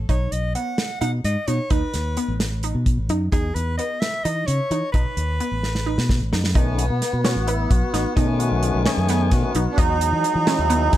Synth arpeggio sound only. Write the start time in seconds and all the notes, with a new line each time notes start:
0.09 D#4
0.55 B3
1.01 D#4
1.48 D#4
1.71 D#4
2.17 B3
2.64 D#4
3.10 D#4
3.33 D#4
3.79 B3
4.25 D#4
4.72 D#4
4.95 D#4
5.40 B3
5.86 D#4
6.33 D#4
6.55 D#4
7.25 C#4
7.48 B3
7.94 D#4
8.17 D#4
8.86 C#4
9.09 B3
9.56 D#4
9.78 D#4
10.47 C#4
10.70 B3